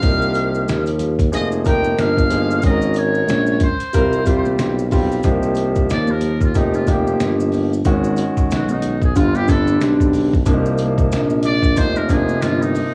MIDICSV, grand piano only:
0, 0, Header, 1, 2, 480
1, 0, Start_track
1, 0, Key_signature, -3, "minor"
1, 0, Tempo, 652174
1, 21, Time_signature, 4, 2, 24, 8
1, 9525, End_track
2, 0, Start_track
2, 0, Title_t, "Grand piano"
2, 0, Program_c, 0, 0
2, 15, Note_on_c, 0, 53, 72
2, 18, Note_on_c, 0, 58, 59
2, 20, Note_on_c, 0, 63, 69
2, 23, Note_on_c, 0, 67, 72
2, 809, Note_off_c, 0, 53, 0
2, 811, Note_off_c, 0, 58, 0
2, 812, Note_off_c, 0, 63, 0
2, 814, Note_off_c, 0, 67, 0
2, 973, Note_on_c, 0, 53, 72
2, 976, Note_on_c, 0, 58, 67
2, 979, Note_on_c, 0, 63, 69
2, 981, Note_on_c, 0, 68, 85
2, 1180, Note_off_c, 0, 53, 0
2, 1182, Note_off_c, 0, 58, 0
2, 1183, Note_off_c, 0, 63, 0
2, 1184, Note_off_c, 0, 68, 0
2, 1214, Note_on_c, 0, 53, 75
2, 1218, Note_on_c, 0, 58, 70
2, 1220, Note_on_c, 0, 63, 69
2, 1223, Note_on_c, 0, 70, 83
2, 1624, Note_off_c, 0, 53, 0
2, 1627, Note_off_c, 0, 58, 0
2, 1628, Note_off_c, 0, 63, 0
2, 1629, Note_off_c, 0, 70, 0
2, 1692, Note_on_c, 0, 53, 73
2, 1695, Note_on_c, 0, 58, 70
2, 1699, Note_on_c, 0, 63, 65
2, 1700, Note_on_c, 0, 68, 75
2, 1900, Note_off_c, 0, 53, 0
2, 1901, Note_off_c, 0, 58, 0
2, 1903, Note_off_c, 0, 63, 0
2, 1904, Note_off_c, 0, 68, 0
2, 1933, Note_on_c, 0, 56, 67
2, 1936, Note_on_c, 0, 61, 69
2, 1940, Note_on_c, 0, 66, 61
2, 1944, Note_on_c, 0, 68, 64
2, 1991, Note_on_c, 0, 70, 78
2, 1999, Note_off_c, 0, 68, 0
2, 2729, Note_off_c, 0, 56, 0
2, 2730, Note_off_c, 0, 61, 0
2, 2732, Note_off_c, 0, 66, 0
2, 2758, Note_off_c, 0, 70, 0
2, 2894, Note_on_c, 0, 55, 67
2, 2897, Note_on_c, 0, 60, 68
2, 2901, Note_on_c, 0, 65, 69
2, 2904, Note_on_c, 0, 70, 84
2, 3101, Note_off_c, 0, 55, 0
2, 3103, Note_off_c, 0, 60, 0
2, 3104, Note_off_c, 0, 65, 0
2, 3106, Note_off_c, 0, 70, 0
2, 3133, Note_on_c, 0, 55, 75
2, 3137, Note_on_c, 0, 60, 73
2, 3139, Note_on_c, 0, 65, 74
2, 3143, Note_on_c, 0, 67, 81
2, 3544, Note_off_c, 0, 55, 0
2, 3546, Note_off_c, 0, 60, 0
2, 3547, Note_off_c, 0, 65, 0
2, 3549, Note_off_c, 0, 67, 0
2, 3616, Note_on_c, 0, 55, 80
2, 3619, Note_on_c, 0, 60, 79
2, 3621, Note_on_c, 0, 65, 76
2, 3625, Note_on_c, 0, 67, 93
2, 3822, Note_off_c, 0, 55, 0
2, 3823, Note_off_c, 0, 60, 0
2, 3824, Note_off_c, 0, 65, 0
2, 3827, Note_off_c, 0, 67, 0
2, 3857, Note_on_c, 0, 53, 83
2, 3860, Note_on_c, 0, 58, 70
2, 3862, Note_on_c, 0, 63, 72
2, 3865, Note_on_c, 0, 67, 85
2, 4651, Note_off_c, 0, 53, 0
2, 4652, Note_off_c, 0, 58, 0
2, 4653, Note_off_c, 0, 63, 0
2, 4654, Note_off_c, 0, 67, 0
2, 4818, Note_on_c, 0, 53, 69
2, 4820, Note_on_c, 0, 58, 62
2, 4823, Note_on_c, 0, 63, 65
2, 4826, Note_on_c, 0, 67, 82
2, 5023, Note_off_c, 0, 53, 0
2, 5024, Note_off_c, 0, 58, 0
2, 5026, Note_off_c, 0, 63, 0
2, 5027, Note_off_c, 0, 67, 0
2, 5058, Note_on_c, 0, 53, 72
2, 5062, Note_on_c, 0, 58, 70
2, 5064, Note_on_c, 0, 63, 67
2, 5066, Note_on_c, 0, 67, 79
2, 5665, Note_off_c, 0, 53, 0
2, 5666, Note_off_c, 0, 58, 0
2, 5668, Note_off_c, 0, 63, 0
2, 5669, Note_off_c, 0, 67, 0
2, 5780, Note_on_c, 0, 51, 81
2, 5784, Note_on_c, 0, 56, 81
2, 5786, Note_on_c, 0, 61, 68
2, 5789, Note_on_c, 0, 66, 95
2, 6572, Note_off_c, 0, 51, 0
2, 6574, Note_off_c, 0, 56, 0
2, 6575, Note_off_c, 0, 61, 0
2, 6577, Note_off_c, 0, 66, 0
2, 6738, Note_on_c, 0, 50, 73
2, 6741, Note_on_c, 0, 55, 67
2, 6743, Note_on_c, 0, 60, 68
2, 6746, Note_on_c, 0, 65, 78
2, 6943, Note_off_c, 0, 50, 0
2, 6945, Note_off_c, 0, 55, 0
2, 6946, Note_off_c, 0, 60, 0
2, 6947, Note_off_c, 0, 65, 0
2, 6976, Note_on_c, 0, 50, 69
2, 6979, Note_on_c, 0, 55, 72
2, 6983, Note_on_c, 0, 60, 68
2, 6986, Note_on_c, 0, 62, 84
2, 7584, Note_off_c, 0, 50, 0
2, 7585, Note_off_c, 0, 55, 0
2, 7587, Note_off_c, 0, 60, 0
2, 7589, Note_off_c, 0, 62, 0
2, 7697, Note_on_c, 0, 48, 82
2, 7700, Note_on_c, 0, 53, 79
2, 7703, Note_on_c, 0, 58, 77
2, 7706, Note_on_c, 0, 62, 67
2, 7754, Note_on_c, 0, 63, 89
2, 7760, Note_off_c, 0, 62, 0
2, 8490, Note_off_c, 0, 48, 0
2, 8492, Note_off_c, 0, 53, 0
2, 8494, Note_off_c, 0, 58, 0
2, 8519, Note_off_c, 0, 63, 0
2, 8656, Note_on_c, 0, 48, 70
2, 8659, Note_on_c, 0, 53, 68
2, 8663, Note_on_c, 0, 58, 65
2, 8665, Note_on_c, 0, 63, 85
2, 8862, Note_off_c, 0, 48, 0
2, 8864, Note_off_c, 0, 53, 0
2, 8865, Note_off_c, 0, 58, 0
2, 8867, Note_off_c, 0, 63, 0
2, 8896, Note_on_c, 0, 48, 80
2, 8899, Note_on_c, 0, 53, 68
2, 8903, Note_on_c, 0, 58, 69
2, 8905, Note_on_c, 0, 62, 72
2, 8954, Note_on_c, 0, 63, 86
2, 8960, Note_off_c, 0, 62, 0
2, 9503, Note_off_c, 0, 48, 0
2, 9505, Note_off_c, 0, 53, 0
2, 9507, Note_off_c, 0, 58, 0
2, 9525, Note_off_c, 0, 63, 0
2, 9525, End_track
0, 0, End_of_file